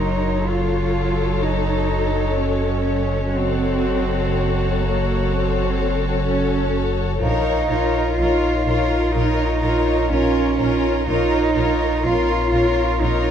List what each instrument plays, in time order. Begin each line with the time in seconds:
Already playing: double bass section F#1, sub bass F#1, viola section F#3, cello section D#4, violin section A#4 C#5, vibraphone C#5 C6
0.44 cello section F4, violin section A4
1.41 cello section D#4
1.88 vibraphone D#5
2.37 cello section C#4
3.33 sub bass F#1, double bass section F#1, cello section C4, viola section F#4, violin section A4 C#5
4.79 cello section A#3
5.29 cello section C4
6.25 cello section C#4
7.20 sub bass A#1, double bass section A#1, viola section F3, cello section D#4, violin section A#4 C#5, vibraphone F5, taiko
7.69 double bass section A#1, viola section F4, violin section A#4 C#5
8.18 double bass section A#1, vibraphone D#4 D#5, viola section F4, cello section F4, violin section A#4 C#5
8.66 double bass section A#1, viola section F4, violin section A#4 C#5
9.14 double bass section A#1, cello section D#4, viola section F4, violin section A#4 C#5
9.63 double bass section A#1, viola section F4, violin section A#4 C#5
10.11 double bass section A#1, cello section C#4, viola section F4, violin section A#4 C#5
10.59 double bass section A#1, viola section F4, violin section A#4 C#5
11.06 double bass section A#1, sub bass A#1, cello section D#4, viola section F4, violin section A#4 C#5
11.56 double bass section A#1, viola section F4, violin section A#4 C#5
12.04 double bass section A#1, vibraphone C4 C6, viola section F4, cello section F4, violin section A#4 C#5
12.52 double bass section A#1, viola section F4, violin section A#4 C#5
13.00 double bass section A#1, cello section D#4, viola section F4, violin section A#4 C#5